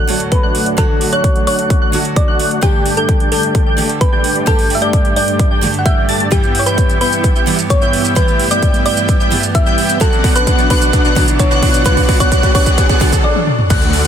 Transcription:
Already playing: D2 A2 F#3 A3 D4 F#4 A4 D5 F#5 F#6
0.07 D3 F#3 A3 F#4, open hi-hat
0.20 closed hi-hat
0.32 B4, kick, closed hi-hat
0.43 A3 D4 F#4 D5 F#5 F#6
0.55 open hi-hat
0.66 closed hi-hat
0.77 D3 F#3 A3 D4 F#4 A4 D5 F#6, kick, closed hi-hat
1.01 open hi-hat
1.12 A3 D4 F#4 C#5 D5 F#5 F#6, closed hi-hat
1.24 kick, closed hi-hat
1.36 closed hi-hat
1.47 A3 D4 F#4 C#5 D5 F#5 F#6, open hi-hat
1.59 closed hi-hat
1.70 kick, closed hi-hat
1.82 A3 D4 F#4 D5 F#5 F#6
1.92 D3 F#3 A3 F#4, open hi-hat
2.05 closed hi-hat
2.16 D5, kick, closed hi-hat
2.28 A3 D4 F#4 D5 F#5 F#6
2.39 open hi-hat
2.51 closed hi-hat
2.61 G2 D3 G3 A3 D4 G4 D5 G5 G6, kick, closed hi-hat
2.86 open hi-hat
2.97 A3 D4 G4 A4 D5 G5 G6, closed hi-hat
3.09 kick, closed hi-hat
3.20 closed hi-hat
3.32 A3 D4 G4 A4 D5 G5 G6, open hi-hat
3.43 closed hi-hat
3.55 kick, closed hi-hat
3.66 A3 D4 G4 D5 G5 G6
3.77 G2 D3 G3 A3 G4, open hi-hat
3.89 closed hi-hat
4.01 B4, kick, closed hi-hat
4.13 A3 D4 G4 D5 G5 G6
4.24 open hi-hat
4.36 closed hi-hat
4.46 G2 D3 G3 A3 G4 A4 G6, kick, closed hi-hat
4.59 open hi-hat
4.70 open hi-hat
4.75 E5
4.82 A3 D4 G4 D5 G5 G6, closed hi-hat
4.93 kick, closed hi-hat
5.05 closed hi-hat
5.16 A3 D4 G4 D5 G5 G6, open hi-hat
5.28 closed hi-hat
5.39 kick, closed hi-hat
5.51 A3 D4 G4 D5 G5 G6
5.61 G2 D3 G3 A3 G4, open hi-hat
5.74 closed hi-hat
5.79 F#5
5.86 A3 D4 G4 D5 E5 G5 G6, kick, closed hi-hat
6.09 A3 D4 G4 D5 A5 A6, open hi-hat
6.20 closed hi-hat
6.31 G2 E3 G3 B3 E4 G4 E5 G5 G6, kick, closed hi-hat, riser, shaker
6.43 shaker
6.55 open hi-hat
6.59 C#5
6.66 B3 E4 G4 B4 E5 G5 G6, closed hi-hat, shaker
6.78 kick, closed hi-hat, shaker
6.89 closed hi-hat, shaker
7.01 B3 E4 G4 B4 E5 G5 G6, open hi-hat
7.13 closed hi-hat, shaker
7.24 kick, closed hi-hat, shaker
7.36 B3 E4 G4 E5 G5 G6, shaker
7.46 G2 E3 G3 B3 G4, open hi-hat
7.59 closed hi-hat, shaker
7.70 C#5, kick, closed hi-hat, shaker
7.82 B3 E4 G4 E5 G5 G6, shaker
7.93 open hi-hat
8.05 closed hi-hat, shaker
8.15 G2 E3 G3 A3 B3 G4 B4 G5 G6, kick, closed hi-hat, shaker
8.28 shaker
8.39 open hi-hat
8.51 B3 E4 G4 D5 E5 G5 G6, closed hi-hat, shaker
8.63 kick, closed hi-hat, shaker
8.74 closed hi-hat, shaker
8.86 B3 E4 G4 D5 E5 G5 G6, open hi-hat
8.97 closed hi-hat, shaker
9.09 kick, closed hi-hat, shaker
9.20 B3 E4 G4 E5 G5 G6, shaker
9.31 G2 E3 G3 B3 G4, open hi-hat
9.43 closed hi-hat, shaker
9.55 E5, kick, closed hi-hat, shaker
9.66 B3 E4 G4 E5 G5 G6, shaker
9.78 open hi-hat
9.89 closed hi-hat, shaker
10.00 B2 D3 F#3 B3 D4 F#4 A4 D5 F#5 F#6, kick, closed hi-hat, shaker
10.13 shaker
10.24 kick, open hi-hat
10.36 B3 D4 F#4 B4 D5 F#5 F#6, closed hi-hat, shaker
10.47 kick, closed hi-hat, shaker
10.59 closed hi-hat, shaker
10.70 B3 D4 F#4 B4 D5 F#5 F#6, kick, open hi-hat
10.82 closed hi-hat, shaker
10.93 kick, closed hi-hat, shaker
11.05 B3 D4 F#4 D5 F#5 F#6, shaker
11.15 D3 F#3 B3 F#4, kick, open hi-hat
11.28 closed hi-hat, shaker
11.39 C#5, kick, closed hi-hat, shaker
11.51 B3 D4 F#4 D5 F#5 F#6, shaker
11.63 kick, open hi-hat
11.74 closed hi-hat, shaker
11.84 D3 E3 F#3 B3 D4 F#4 B4 D5 F#5 F#6, kick, closed hi-hat, shaker
11.97 kick, open hi-hat, shaker
12.09 kick, open hi-hat
12.20 B3 D4 F#4 C#5 D5 F#5 F#6, kick, closed hi-hat, shaker
12.32 kick, closed hi-hat, shaker
12.43 kick, closed hi-hat, shaker
12.55 B3 D4 F#4 C#5 D5 F#5 F#6, kick, open hi-hat
12.66 kick, closed hi-hat, shaker
12.78 kick, closed hi-hat, swell, shaker
12.89 B3 D4 F#4 D5 F#5 F#6, kick, closed hi-hat, shaker
13.00 D3 F#3 B3 F#4, kick, open hi-hat
13.13 kick, closed hi-hat, shaker
13.24 D5
13.36 high tom
13.47 mid tom
13.59 mid tom
13.70 D2 D3 A3 D4 F#4 D5 F#5 F#6, kick, closed hi-hat, crash, impact, shaker
13.82 closed hi-hat, shaker
13.93 open hi-hat

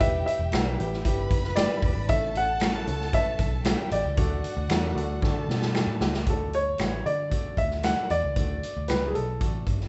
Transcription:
Already playing: G4 G5
0.00 E1 G3 B3 E4 G4 E5, kick, closed hi-hat
0.26 E5, closed hi-hat
0.39 E1
0.52 B1 G3 B3 E4 A4, finger snap, snare, closed hi-hat
0.78 A1 G3 B3 E4 G4, closed hi-hat
0.93 snare
1.03 G1 G3 B3 E4 G4 B4 B5, kick, closed hi-hat
1.31 F#1, kick, closed hi-hat
1.44 snare
1.55 G3 B3 E4 G4 D5, finger snap, snare, closed hi-hat
1.82 E1, kick, open hi-hat
1.97 G#1
2.08 A1 A3 C#4 E4 A4 E5 A5, kick, closed hi-hat
2.35 F#5, closed hi-hat
2.60 A3 C#4 E4 A4, finger snap, snare, closed hi-hat
2.86 C#2 A3 C#4 E4 A4, closed hi-hat
3.01 snare
3.13 A3 C#4 E4 B4 E5, kick, closed hi-hat
3.26 muted picked electric bass stroke
3.39 B1, kick, closed hi-hat
3.64 A3 C#4 E4 G4 A4 G5, finger snap, snare, closed hi-hat
3.91 A1 D5, closed hi-hat
4.05 C#2
4.17 D2 A3 D4 F#4 A4 F#5, kick, closed hi-hat
4.44 closed hi-hat
4.57 D2
4.69 E2 A3 D4 F#4 A4, finger snap, snare, closed hi-hat
4.94 D2 A3 D4 F#4 A4, closed hi-hat
5.21 D3 A3 D4 F#4 A4 A5, kick, snare
5.49 B2, snare
5.62 snare
5.73 A3 D4 F#4 A4, finger snap, snare
5.87 A2
6.01 C#2, snare
6.14 snare
6.26 D2 A3 D4 F#4 A4, kick, closed hi-hat
6.53 C#5, closed hi-hat
6.77 A1 A3 D4 F#4 B4, finger snap, snare, closed hi-hat
7.06 D3 D5, closed hi-hat
7.29 A3 D4 F#4 A4, kick, closed hi-hat
7.45 muted picked electric bass stroke
7.57 D2 E5, kick, closed hi-hat
7.71 snare
7.83 A3 D4 F#4 A4 F#5, finger snap, snare, closed hi-hat
8.10 E2 D5, closed hi-hat
8.23 C#2
8.36 D2 A3 D4 F#4 A4, kick, closed hi-hat
8.63 closed hi-hat
8.77 D2
8.88 C#2 A3 D4 F#4 B4, finger snap, snare, closed hi-hat
9.07 G#4
9.15 B1 A4, closed hi-hat
9.40 A1 A3 D4 F#4 A4, kick, closed hi-hat
9.66 G1, kick, closed hi-hat
9.81 snare

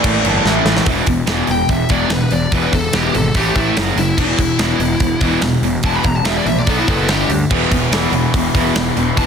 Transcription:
Already playing: A2 E3 A3 A#3 D5
0.04 A1, kick, crash
0.24 G1 E3 A3, crash
0.29 A2
0.45 A1 A2 E3 A3, snare
0.65 A1, snare
0.77 snare
0.86 E1 E2 B2 E3, kick, open hi-hat
1.06 E1 E2 B2, kick, open hi-hat
1.27 E1 E2 B2 E3, snare, open hi-hat
1.47 E1 E2 B2, open hi-hat
1.51 G5
1.68 E1 E2 B2 E5, kick, open hi-hat
1.89 E1 E2 B2 E3 D5, kick, open hi-hat
2.10 E1 E2 B2 B4, snare, open hi-hat
2.31 E1 E2 B2 D5, open hi-hat
2.51 E1 E2 B2 E3 B4, kick, open hi-hat
2.72 E1 E2 B2 A4, kick, open hi-hat
2.92 E1 E2 B2 E3 G4, snare, open hi-hat
3.14 G#1 E2 B2 A4, open hi-hat
3.35 A1 A2 E3 A3 G4, kick, open hi-hat
3.55 A1 A2 E3 A3 E4, kick, open hi-hat
3.77 F#1 F#2 C#3 F#3, snare, open hi-hat
3.96 F#1 F#2 C#3 E4, open hi-hat
4.17 E1 E2 B2 E3 E4, kick, crash
4.38 E1 E2 B2, kick, open hi-hat
4.59 E1 E2 B2 E3, snare, open hi-hat
4.79 E1 E2 B2, open hi-hat
5.00 E1 E2 B2, kick, open hi-hat
5.21 E1 E2 B2 E3, kick, open hi-hat
5.41 E1 E2 B2, snare, open hi-hat
5.62 E1 E2 B2, open hi-hat
5.83 E1 E2 B2 E3 A5, kick, open hi-hat
5.95 B5
6.03 E1 E2 B2 A#5, kick, open hi-hat
6.16 A5
6.23 E1 E2 B2 E3 E5, snare, open hi-hat
6.37 D5
6.45 A#1 E2 B2 E5, open hi-hat
6.59 D5
6.67 B1 B2 F#3 B3 A4, kick, open hi-hat
6.78 E4
6.88 F#1 B2 F#3 B3 A4, kick, open hi-hat
7.09 G1 G2 D3 G3 G4, snare, open hi-hat
7.29 D2 G2 D3, open hi-hat
7.51 E1 E2 B2 E3, kick, crash
7.71 E1 E2 B2, kick, open hi-hat
7.91 E1 E2 B2 E3, snare, open hi-hat
8.12 E1 E2 B2 E3, open hi-hat
8.34 E1 E2 B2 E3, kick, open hi-hat
8.54 E1 E2 B2 E3, kick, open hi-hat
8.76 E1 E2 B2 E3, snare, open hi-hat
8.97 E1 E2 B2 E3, open hi-hat
9.17 E1 E2 B2 E3 A5, kick, open hi-hat

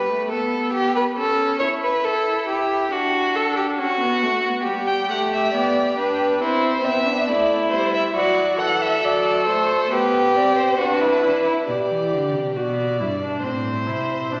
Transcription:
Already playing: G3 B4
0.09 A3
0.30 B3 A4
0.73 G4
0.96 B4
1.17 C#4 A4
1.59 E4 C#5
1.83 B4
2.05 A4
2.48 G4
2.91 D4 F#4
3.35 A4
3.57 G4
3.78 C#4 F#4
4.00 B3
4.22 A3
4.43 B3
4.66 G3 G4
4.87 G5
5.09 A3 F#5
5.33 E5
5.53 B3 D5
5.97 D4 B4
6.40 C4 E4 C5
6.82 B3 C4 E5
7.06 D4
7.28 A3 E4 D5
7.71 G3 C5
7.94 E5
8.14 F#3 F#4 D5
8.58 E3 A4 F#5
8.82 E5
9.02 F#3 D5
9.47 A3 C5
9.90 B3 G4 B4
10.35 C4 D5
10.56 C5
10.78 D4 F#4 B4
11.01 E4
11.24 D4 E4
11.46 E4
11.67 B2 G4 D5
11.90 E3
12.12 D3
12.34 C3
12.55 B2 F#4 D5
13.00 G2 E4
13.22 D4
13.43 A2 C4 C5
13.87 C3 E4
14.31 B2 D4

